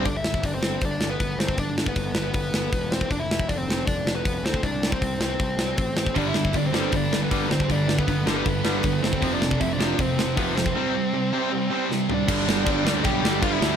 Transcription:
<<
  \new Staff \with { instrumentName = "Lead electric guitar" } { \time 4/4 \key g \mixolydian \tempo 4 = 157 <d' d''>16 <e' e''>8. <d' d''>16 <c' c''>8. <d' d''>8. <b b'>8. <c' c''>8 | <d' d''>8. <b b'>8. <b b'>2 <c' c''>8 | <d' d''>16 <e' e''>8. <d' d''>16 <c' c''>8. <d' d''>8. <b b'>8. <c' c''>8 | <d' d''>8. <c' c''>8. <c' c''>2 <c' c''>8 |
<d' d''>16 <e' e''>8. <d' d''>16 <c' c''>8. <d' d''>8. <b b'>8. <c' c''>8 | <d' d''>8. <b b'>8. <b b'>2 <c' c''>8~ | <c' c''>16 <d' d''>8. <e' e''>16 <d' d''>8. <c' c''>4 <b b'>8 <c' c''>8~ | <c' c''>2. r8 <d' d''>8~ |
<d' d''>2 <g' g''>4 <f' f''>16 <e' e''>8. | }
  \new Staff \with { instrumentName = "Distorted electric guitar" } { \clef bass \time 4/4 \key g \mixolydian r1 | r1 | r1 | r1 |
<g, d g>1 | <g, d g>1 | <f, c f>1 | <c g c'>1 |
<g, d g>2 <g, d g>2 | }
  \new Staff \with { instrumentName = "Overdriven electric guitar" } { \clef bass \time 4/4 \key g \mixolydian r1 | r1 | r1 | r1 |
<g, d g>8 <g, d>8 <g, d>8 <g, d g>8 <g, d>8 <g, d>8 <g, d g>8 <g, d>8 | <g, d>8 <g, d>8 <g, d>8 <g, d g>8 <g, d>8 <g, d g>8 <g, d>8 <g, d>8 | <f, c f>8 <f, c>8 <f, c>8 <f, c f>8 <f, c>8 <f, c>8 <f, c f>8 <f, c>8 | <c g c'>8 <c g>8 <c g>8 <c g c'>8 <c g>8 <c g c'>8 <c g>8 <c g>8 |
<g, d g>8 <g, d g>8 <g, d g>8 <g, d g>8 <g, d g>8 <g, d g>8 <g, d g>8 <g, d g>8 | }
  \new Staff \with { instrumentName = "Overdriven electric guitar" } { \clef bass \time 4/4 \key g \mixolydian r1 | r1 | r1 | r1 |
<g, d g>8 <g, d>8 <g, d>8 <g, d g>8 <g, d>8 <g, d>8 <g, d g>8 <g, d>8 | <g, d>8 <g, d>8 <g, d>8 <g, d g>8 <g, d>8 <g, d g>8 <g, d>8 <g, d>8 | <f, c f>8 <f, c>8 <f, c>8 <f, c f>8 <f, c>8 <f, c>8 <f, c f>8 <f, c>8 | <c g c'>8 <c g>8 <c g>8 <c g c'>8 <c g>8 <c g c'>8 <c g>8 <c g>8 |
<g, d g>8 <g, d g>8 <g, d g>8 <g, d g>8 <g, d g>8 <g, d g>8 <g, d g>8 <g, d g>8 | }
  \new Staff \with { instrumentName = "Picked electric bass" } { \clef bass \time 4/4 \key g \mixolydian g,,8 g,,8 g,,8 g,,8 g,,8 g,,8 g,,8 g,,8 | g,,4 g,,8 g,,8 g,,8 g,,8 e,,4 | f,,8 f,,8 f,,8 f,,8 f,,8 f,,8 f,,8 d,8 | c,4 c,8 c,8 c,8 c,8 a,,4 |
g,,8 g,,8 g,,8 g,,8 g,,8 g,,8 g,,8 g,,8 | g,,4 g,,8 g,,8 g,,8 g,,8 g,,4 | f,,8 f,,8 f,,8 f,,8 f,,8 f,,8 f,,8 f,,8 | r1 |
g,,8 g,,8 g,,8 d,8 b,,8 g,,8 g,8 d,8 | }
  \new DrumStaff \with { instrumentName = "Drums" } \drummode { \time 4/4 <hho bd>8 sn16 bd16 <hho bd>8 sn8 <hho bd>8 sn8 <hho bd>8 sn16 bd16 | <hho bd>8 sn16 bd16 <hho bd>8 sn8 <hho bd>8 sn8 <hho bd>8 sn16 bd16 | <hho bd>8 sn16 bd16 <hho bd>8 sn8 <hho bd>8 sn8 <hho bd>8 sn16 bd16 | <hho bd>8 sn16 bd16 <hho bd>8 sn8 <hho bd>8 sn8 <hho bd>8 sn16 bd16 |
<hho bd>8 sn16 bd16 <hho bd>8 sn8 <hho bd>8 sn8 <hho bd>8 sn16 bd16 | <hho bd>8 sn16 bd16 <hho bd>8 sn8 <hho bd>8 sn8 <hho bd>8 sn16 bd16 | <hho bd>8 sn16 bd16 <hho bd>8 sn8 <hho bd>8 sn8 <hho bd>8 sn16 bd16 | r4 r4 r4 sn8 tomfh8 |
<cymc bd>8 sn8 <cymc bd>8 sn8 <cymc bd>8 sn8 <cymc bd>8 sn8 | }
>>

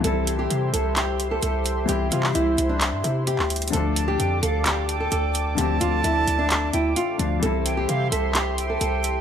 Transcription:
<<
  \new Staff \with { instrumentName = "Flute" } { \time 4/4 \key c \mixolydian \tempo 4 = 130 r1 | r1 | r8 a''8 g''8 f''4 g''4. | a''2~ a''8 g''4 f''8 |
r8 g''8 f''8 e''4 g''4. | }
  \new Staff \with { instrumentName = "Analog synth pad" } { \time 4/4 \key c \mixolydian <g' c'' e'' c'''>1~ | <g' c'' e'' c'''>1 | <a' d'' a'' d'''>1~ | <a' d'' a'' d'''>1 |
<g' c'' e'' c'''>1 | }
  \new Staff \with { instrumentName = "Nylon-string guitar" } { \time 4/4 \key c \mixolydian a'8. g'8. a'8 g'8. a'16 a'4 | g'8 f'8 e'8. d'8. e'8 g'4 | a'8. g'8. a'8 g'8. a'16 a'4 | g'8 f'8 e'8. d'8. e'8 f'4 |
a'8. g'8. a'8 g'8. a'16 a'4 | }
  \new Staff \with { instrumentName = "Felt piano" } { \clef bass \time 4/4 \key c \mixolydian <e g c' e'>1 | <e g c' e'>1 | <d f a d'>1 | <d f a c'>2.~ <d f a c'>8 <d f a d'>8 |
<e g c' e'>1 | }
  \new Staff \with { instrumentName = "808-style bass" } { \clef bass \time 4/4 \key c \mixolydian c,4 c8 c,4. c,4 | c,8 c8 c,8 c,8. g,16 c8. d,8. | d,4 f,8 d,4. d,4 | d,8 d,8 d,8 d,4 d,8 r8 d,8 |
c,4 c8 c,4. c,4 | }
  \new DrumStaff \with { instrumentName = "Drums" } \drummode { \time 4/4 hh8 hh8 hh8 hh8 <hc hh>8 hh8 hh8 hh8 | hh8 hh16 hc16 hh8 hh8 <hc hh>8 hh8 hh16 hc16 <hh hho>32 hh32 hh32 hh32 | hh8 hh8 hh8 hh8 <hc hh>8 hh8 hh8 hh8 | hh8 hh8 hh8 hh8 <hc hh>8 hh8 hh8 hh8 |
hh8 hh8 hh8 hh8 <hc hh>8 hh8 hh8 hh8 | }
>>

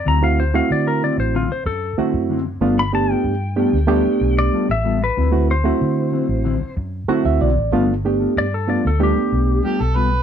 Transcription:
<<
  \new Staff \with { instrumentName = "Electric slide guitar" } { \time 4/4 \key g \major \tempo 4 = 94 bes''16 f''16 c''16 f''16 d''16 bes'16 d''16 c''16 f'16 c''16 a'8 r4 | r16 b''16 a''16 g''2 d''8 e''8 b'16~ | b'8 c''2 r4. | r4 d''16 a'16 d''16 a'16 g'4 r4 | }
  \new Staff \with { instrumentName = "Harmonica" } { \time 4/4 \key g \major r1 | r1 | r1 | r2. g'16 a'16 b'8 | }
  \new Staff \with { instrumentName = "Reed electric piano" } { \time 4/4 \key g \major << { r1 | r1 | r2. fis''16 e''16 d''8 | r1 | } \\ { r16 <a c' e' fis'>16 r16 <a c' e' fis'>4~ <a c' e' fis'>16 r4 <a c' e' fis'>8. r16 | <a b d' f'>16 r16 <a b d' g'>8. r16 <a b d' g'>16 r16 <a b d' g'>4~ <a b d' g'>16 r8. | r16 <a c' e' fis'>16 r16 <a c' e' fis'>4~ <a c' e' fis'>16 r4 <a c' e' fis'>8. r16 | <a b d' f'>16 r16 <a b d' g'>8. r16 <a b d' f'>16 r16 <a b d' g'>4~ <a b d' g'>16 r8. | } >> }
  \new Staff \with { instrumentName = "Clean electric guitar" } { \time 4/4 \key g \major <d fis c' e'>16 r8 <fis c' e'>16 r8 <d fis c' e'>16 r16 <d fis c' e'>16 r8. <d fis c' e'>16 r16 <d fis c' e'>16 r16 | <g b f' a'>16 r8 <b f' a'>16 r8 <g b f' a'>16 r16 <g b f' a'>16 r8. <g b f' a'>16 r16 <g b f' a'>16 r16 | <d fis c' e'>16 r8 <fis c' e'>16 r8 <d fis c' e'>16 r16 <d fis c' e'>16 r8. <d fis c' e'>16 r16 <d fis c' e'>16 r16 | <g b f' a'>16 r8 <b f' a'>16 r8 <g b f' a'>16 r16 <g b f' a'>16 r8. <g b f' a'>16 r16 <g b f' a'>16 r16 | }
  \new Staff \with { instrumentName = "Fingered electric bass" } { \clef bass \time 4/4 \key g \major d,4 d8. a,,8 r16 fis,8 r16 fis,8. | g,,4 g,8. d,8 r16 b,,8 r16 a,,8. | d,4 d8. a,,8 r16 fis,8 r16 d,16 b,,16 a,,16 | g,,4 g,8. d,8 r16 b,,8 r16 b,,8. | }
>>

